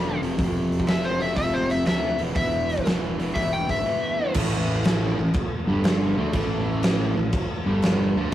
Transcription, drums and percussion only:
0.23 open hi-hat
0.39 kick, open hi-hat
0.72 open hi-hat
0.80 kick
0.87 snare, open hi-hat
1.21 open hi-hat
1.36 kick, open hi-hat
1.70 open hi-hat
1.86 snare, open hi-hat
2.18 open hi-hat
2.35 kick, open hi-hat
2.69 open hi-hat
2.78 kick
2.86 snare, open hi-hat
3.20 open hi-hat
3.36 kick, open hi-hat
3.69 kick, open hi-hat
4.34 kick, crash
4.84 snare, crash
5.34 kick, crash
5.84 snare, crash
6.33 kick, crash
6.83 snare, crash
7.32 kick, crash
7.82 snare, crash

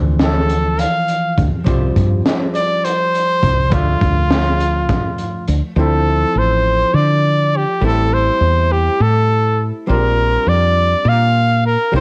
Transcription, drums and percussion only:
0.19 snare, closed hi-hat
0.49 closed hi-hat
0.79 closed hi-hat
1.08 closed hi-hat
1.38 kick, closed hi-hat
1.66 kick, closed hi-hat
1.96 kick, closed hi-hat
2.26 snare, closed hi-hat
2.55 closed hi-hat
2.85 closed hi-hat
3.14 closed hi-hat
3.43 kick, closed hi-hat
3.71 kick, closed hi-hat
4.01 kick, closed hi-hat
4.30 snare, closed hi-hat
4.60 closed hi-hat
4.89 kick, snare, closed hi-hat
5.18 closed hi-hat
5.48 closed hi-hat

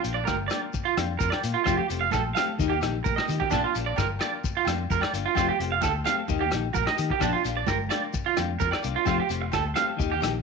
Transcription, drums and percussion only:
0.04 closed hi-hat, muted conga, shekere
0.27 kick, cross-stick, high conga, low agogo, shekere
0.50 cross-stick, closed hi-hat, low agogo, shekere
0.74 kick, muted conga, shekere
0.97 cross-stick, closed hi-hat, high conga, low agogo, shekere
1.20 kick, high conga, shekere
1.32 cross-stick, low agogo
1.43 closed hi-hat, muted conga, shekere
1.66 kick, cross-stick, muted conga, low agogo, shekere
1.89 closed hi-hat, muted conga, shekere
2.11 kick, cross-stick, high conga, low agogo, shekere
2.36 cross-stick, closed hi-hat, high conga, low agogo, shekere
2.59 kick, muted conga, low conga, shekere
2.82 cross-stick, closed hi-hat, low conga, low agogo, shekere
3.05 kick, high conga, shekere
3.17 cross-stick, high conga, low agogo
3.28 closed hi-hat, low conga, shekere
3.40 kick, low conga
3.51 kick, cross-stick, muted conga, low agogo, shekere
3.74 closed hi-hat, muted conga, shekere
3.96 kick, cross-stick, high conga, low agogo, shekere
4.19 cross-stick, closed hi-hat, low agogo, shekere
4.44 kick, muted conga, shekere
4.65 cross-stick, closed hi-hat, high conga, low agogo, shekere
4.90 kick, high conga, shekere
5.01 cross-stick, low agogo
5.14 closed hi-hat, muted conga, shekere
5.35 kick, cross-stick, muted conga, low agogo, shekere
5.60 closed hi-hat, muted conga
5.81 kick, cross-stick, high conga, low agogo, shekere
6.04 cross-stick, closed hi-hat, high conga, low agogo, shekere
6.28 kick, muted conga, low conga, shekere
6.51 cross-stick, closed hi-hat, low conga, low agogo, shekere
6.74 kick, high conga, shekere
6.86 cross-stick, low agogo
6.98 closed hi-hat, muted conga, shekere
7.10 kick
7.20 kick, cross-stick, muted conga, low agogo, shekere
7.45 closed hi-hat, muted conga, shekere
7.67 kick, cross-stick, high conga, low agogo, shekere
7.90 cross-stick, closed hi-hat, low agogo, shekere
8.14 kick, muted conga, shekere
8.37 cross-stick, closed hi-hat, high conga, low agogo, shekere
8.60 kick, high conga, shekere
8.71 cross-stick, low agogo
8.83 closed hi-hat, muted conga, shekere
9.05 kick, cross-stick, low agogo, shekere
9.30 closed hi-hat, muted conga, shekere
9.52 kick, cross-stick, high conga, low agogo, shekere
9.76 cross-stick, closed hi-hat, high conga, low agogo, shekere
10.00 kick, muted conga, low conga, shekere
10.21 cross-stick, closed hi-hat, low conga, low agogo, shekere

